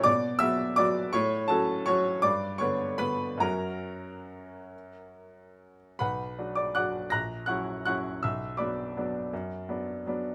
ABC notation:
X:1
M:3/4
L:1/8
Q:1/4=160
K:Bm
V:1 name="Grand piano"
[dd']2 [ee']2 [dd']2 | [cc']2 [Aa]2 [cc']2 | [dd']2 [cc']2 [Bb]2 | [^A^a]6- |
[^A^a]4- [Aa] z | [Bfb]3 [dd'] [fd'f']2 | [^af'^a']2 [fc'f']2 [fc'f']2 | [ee']2 [dbd']4- |
[dbd']4- [dbd'] z |]
V:2 name="Grand piano"
B,,2 [F,B,F]2 [F,B,F]2 | A,,2 [F,CF]2 [F,CF]2 | G,,2 [D,B,B]2 [D,B,]2 | [F,,F,CF]6- |
[F,,F,CF]6 | B,,,2 [F,DF]2 [F,DF]2 | ^A,,,2 [F,CE]2 [F,CE]2 | B,,,2 [F,B,D]2 [F,B,D]2 |
F,,2 [F,B,D]2 [F,B,D]2 |]